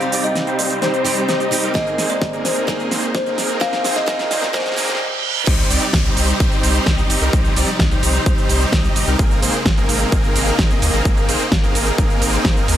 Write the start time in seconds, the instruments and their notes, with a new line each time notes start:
Already playing: string section C3 G3 D#4, steel-string acoustic guitar G3 C4 D#4 G4, kalimba F5, riser
0.01 closed hi-hat, cabasa
0.12 supersaw synth G3 C4 D#4 G4 D5, open hi-hat, cabasa
0.24 kalimba D#5, closed hi-hat, cabasa
0.35 snare, closed hi-hat, cabasa
0.47 supersaw synth G3 C4 D#4 G4 C5, closed hi-hat, cabasa
0.59 kalimba D5, open hi-hat, cabasa
0.70 closed hi-hat, cabasa
0.82 supersaw synth G3 C4 D#4 G4 C5, kalimba C5, snare, closed hi-hat, cabasa
0.94 closed hi-hat, cabasa
1.04 steel-string acoustic guitar G3 C4 D#4 G4, open hi-hat, cabasa
1.17 closed hi-hat, cabasa
1.28 supersaw synth G3 C4 D#4 G4 D#5, kalimba C5, snare, closed hi-hat, cabasa
1.40 closed hi-hat, cabasa
1.51 steel-string acoustic guitar G3 C4 D#4 G4, open hi-hat, cabasa
1.63 supersaw synth G3 C4 D#4 G4 A#4, closed hi-hat, cabasa
1.74 string section G#3 A#3, steel-string acoustic guitar A#3 C4 D#4 G#4, supersaw synth G#4, kalimba D#5, kick, snare, closed hi-hat, cabasa
1.87 closed hi-hat, cabasa
1.98 supersaw synth A#3 C4 D#4 G#4 C5, snare, open hi-hat, cabasa
2.10 kalimba D5, closed hi-hat, cabasa
2.22 kick, snare, closed hi-hat, cabasa
2.33 supersaw synth A#3 C4 D#4 G#4 A#4, closed hi-hat, cabasa
2.45 kalimba C5, snare, open hi-hat, cabasa
2.56 closed hi-hat, cabasa
2.67 steel-string acoustic guitar A#3 C4 D#4 G#4, supersaw synth A#3, kalimba A#4, kick, snare, closed hi-hat, cabasa
2.80 closed hi-hat, cabasa
2.91 supersaw synth A#3 C4 D#4 G#4 C5, snare, open hi-hat, cabasa
3.03 closed hi-hat, cabasa
3.15 kalimba C5, kick, snare, closed hi-hat, cabasa
3.26 supersaw synth A#3 C4 D#4 G#4 A#4, closed hi-hat, cabasa
3.38 snare, open hi-hat, cabasa
3.50 closed hi-hat, cabasa
3.60 steel-string acoustic guitar A#3 C4 D#4 G#4, supersaw synth C4 D#4 G#4, kalimba F5, kick, snare, closed hi-hat, cabasa
3.73 snare, closed hi-hat, cabasa
3.84 supersaw synth A#3 C4 D#4 G#4 C5, snare, open hi-hat, cabasa
3.96 kalimba D#5, snare, closed hi-hat, cabasa
4.06 steel-string acoustic guitar A#3 C4 D#4 G#4, supersaw synth A#3 C4 D#4 G#4 A#4, kick, snare, closed hi-hat, cabasa
4.19 snare, closed hi-hat, cabasa
4.31 supersaw synth A#3 C4 D#4 G#4 C5, kalimba D5, snare, open hi-hat, cabasa
4.43 snare, closed hi-hat, cabasa
4.53 steel-string acoustic guitar A#3 C4 D#4 G#4, supersaw synth A#3 C4 D#4 G#4 A#4, kalimba C5, kick, snare, closed hi-hat, reverse cymbal, cabasa
4.60 snare
4.66 snare, closed hi-hat, cabasa
4.72 snare
4.76 steel-string acoustic guitar A#3 C4 D#4 G#4, supersaw synth A#3 C4 D#4 G#4 A#4, snare, open hi-hat, cabasa
4.83 snare
4.89 snare, closed hi-hat, cabasa
4.95 snare
5.47 sub bass C2, string section C3 G3 D#4, supersaw synth G3 C4 D#4 G4 C5, kick, closed hi-hat, crash, downlifter, cabasa
5.59 closed hi-hat, cabasa
5.70 sub bass C2, supersaw synth G3 C4 D#4 G4 D5, open hi-hat, ride, cabasa
5.82 closed hi-hat, cabasa
5.93 sub bass C2, kick, snare, closed hi-hat, cabasa
6.05 supersaw synth G3 C4 D#4 G4 C5, closed hi-hat, cabasa
6.17 sub bass C2, open hi-hat, ride, cabasa
6.29 closed hi-hat, cabasa
6.40 sub bass C2, supersaw synth G3 C4 D#4 G4 C5, kick, closed hi-hat, cabasa
6.52 closed hi-hat, cabasa
6.63 sub bass C2, open hi-hat, ride, cabasa
6.75 closed hi-hat, cabasa
6.86 sub bass C2, supersaw synth G3 C4 D#4 G4 D#5, kick, snare, closed hi-hat, cabasa
6.98 closed hi-hat, cabasa
7.10 sub bass G1, open hi-hat, ride, cabasa
7.22 sub bass C2, supersaw synth G3 C4 D#4 G4 A#4, closed hi-hat, cabasa
7.33 sub bass C2, string section F3, supersaw synth G3 C4 D#4 G4 C5, kick, closed hi-hat, cabasa
7.45 closed hi-hat, cabasa
7.56 sub bass C2, supersaw synth G3 C4 D#4 G4 D5, open hi-hat, ride, cabasa
7.68 closed hi-hat, cabasa
7.79 sub bass C2, kick, snare, closed hi-hat, cabasa
7.91 supersaw synth G3 C4 D#4 G4 C5, closed hi-hat, cabasa
8.03 sub bass C2, open hi-hat, ride, cabasa
8.14 closed hi-hat, cabasa
8.26 sub bass C2, supersaw synth G3 C4 D#4 G4 C5, kick, closed hi-hat, cabasa
8.38 closed hi-hat, cabasa
8.49 sub bass C2, open hi-hat, ride, cabasa
8.61 closed hi-hat, cabasa
8.72 sub bass C2, supersaw synth G3 C4 D#4 G4 D#5, kick, snare, closed hi-hat, cabasa
8.84 closed hi-hat, cabasa
8.96 sub bass G1, open hi-hat, ride, cabasa
9.08 sub bass C2, supersaw synth G3 C4 D#4 G4 A#4, closed hi-hat, cabasa
9.19 sub bass G#1, string section G#3 A#3, supersaw synth A#3 C4 D#4 G#4 A#4, kick, closed hi-hat, cabasa
9.31 closed hi-hat, cabasa
9.42 sub bass G#1, supersaw synth A#3 C4 D#4 G#4 C5, open hi-hat, ride, cabasa
9.54 closed hi-hat, cabasa
9.66 sub bass G#1, kick, snare, closed hi-hat, cabasa
9.77 supersaw synth A#3 C4 D#4 G#4 A#4, closed hi-hat, cabasa
9.89 sub bass G#1, open hi-hat, ride, cabasa
10.01 closed hi-hat, cabasa
10.12 sub bass G#1, supersaw synth A#3 C4 D#4 G#4 A#4, kick, closed hi-hat, cabasa
10.24 closed hi-hat, cabasa
10.36 sub bass G#1, open hi-hat, ride, cabasa
10.47 closed hi-hat, cabasa
10.59 sub bass G#1, supersaw synth A#3 C4 D#4 G#4 D#5, kick, snare, closed hi-hat, cabasa
10.71 closed hi-hat, cabasa
10.82 sub bass D#2, open hi-hat, ride, cabasa
10.94 sub bass G#1, supersaw synth A#3 C4 D#4 G#4 A#4, closed hi-hat, cabasa
11.05 sub bass G#1, supersaw synth A#3 C4 D#4 G#4 A#4, kick, closed hi-hat, cabasa
11.17 closed hi-hat, cabasa
11.29 sub bass G#1, supersaw synth A#3 C4 D#4 G#4 C5, open hi-hat, ride, cabasa
11.40 closed hi-hat, cabasa
11.52 sub bass G#1, kick, snare, closed hi-hat, cabasa
11.63 supersaw synth A#3 C4 D#4 G#4 A#4, closed hi-hat, cabasa
11.75 sub bass G#1, open hi-hat, ride, cabasa
11.87 closed hi-hat, cabasa
11.98 sub bass G#1, supersaw synth C4 D#4 A#4, kick, closed hi-hat, cabasa
12.10 closed hi-hat, cabasa
12.22 sub bass G#1, open hi-hat, ride, cabasa
12.33 supersaw synth A#3 C4 D#4 G#4 C5, closed hi-hat, cabasa
12.45 sub bass G#1, kick, snare, closed hi-hat, cabasa
12.57 supersaw synth A#3 C4 D#4 G#4 A#4, closed hi-hat, cabasa
12.68 sub bass D#2, open hi-hat, ride, cabasa